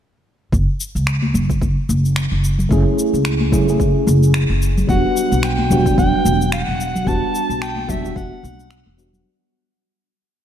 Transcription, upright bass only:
0.53 0.65 F#1 medium
0.95 1.31 C#2 medium
1.35 1.57 F#1 medium
1.62 1.74 F#1 medium
1.89 2.27 F#1 medium
2.32 2.67 F#1 medium
2.71 2.83 F#1 medium
3.13 3.49 C#2 medium
3.53 3.75 F#1 medium
3.80 3.92 F#1 medium
4.07 4.45 F#1 loud
4.50 4.85 F#1 medium
4.89 5.01 E1 medium
5.32 5.67 B1 medium
5.71 5.93 E1 medium
5.98 6.10 E1 medium
6.25 6.63 E1 medium
6.68 7.03 E1 medium
7.07 7.19 E1 medium
7.50 7.85 B1 medium
7.89 8.12 E1 medium
8.16 8.29 E1 medium
8.44 8.81 B1 medium
8.86 9.22 E1 medium

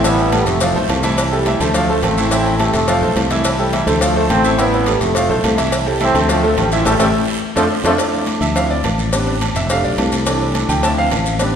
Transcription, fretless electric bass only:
0.00 0.41 A1 loud
0.46 0.73 F1 loud
0.74 0.88 B1 medium
0.89 1.55 C2 medium
1.60 2.00 D2 medium
2.02 2.68 A1 loud
2.74 3.01 F1 medium
3.02 3.15 B1 medium
3.16 3.82 C2 medium
3.87 4.27 D2 loud
4.30 4.96 A1 loud
5.01 5.28 F1 medium
5.30 5.43 B1 medium
5.44 6.09 C2 medium
6.15 6.54 D2 loud
6.57 6.83 A1 medium
6.86 6.96 A1 loud
6.99 7.10 A1 loud
7.56 7.67 F2 medium
7.84 7.95 F2 medium
8.41 8.81 D2 loud
8.84 9.50 A1 medium
9.55 9.82 F1 medium
9.84 9.97 B1 medium
9.98 10.64 C2 loud
10.69 11.09 D2 loud
11.12 11.56 A1 medium

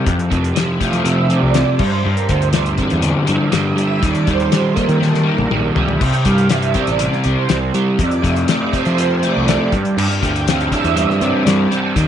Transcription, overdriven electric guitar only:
0.00 0.80 C4 medium
0.06 1.30 F2 medium
0.30 1.03 C3 medium
0.56 1.28 F3 medium
0.80 1.79 A3 medium
1.04 1.54 C3 medium
1.29 1.79 F3 medium
1.56 1.80 C3 medium
1.79 2.04 G2 medium
2.05 3.28 G2 medium
2.30 3.01 D3 medium
2.54 3.27 G3 medium
2.78 4.02 C4 medium
3.02 3.51 D3 medium
3.27 3.76 G3 medium
3.52 4.01 D3 medium
3.76 4.27 G3 medium
4.02 4.99 D#3 medium
4.27 4.51 G3 medium
4.52 5.23 G3 medium
4.76 6.00 A#3 medium
5.00 5.50 D#3 medium
5.24 5.76 G3 medium
5.52 6.01 D#3 medium
5.77 6.01 G3 medium
6.01 6.99 C3 medium
6.26 6.49 G3 medium
6.51 7.24 G3 medium
6.74 8.49 C4 medium
7.00 7.48 C3 medium
7.26 7.73 G3 medium
7.49 7.99 C3 medium
7.74 7.99 G3 medium
8.00 9.24 F2 medium
8.23 9.47 C3 medium
8.49 9.22 A3 medium
8.73 9.73 C4 medium
8.99 9.47 F3 medium
9.23 9.73 A3 medium
9.48 9.73 F3 medium
9.73 9.97 G2 medium
9.98 11.22 G2 medium
10.23 11.46 D3 medium
10.49 11.20 C4 medium
10.73 11.96 D4 medium
10.96 11.46 G3 medium
11.21 11.70 C4 medium
11.46 12.08 G3 medium
11.71 11.96 C4 medium
11.95 12.08 D#3 medium

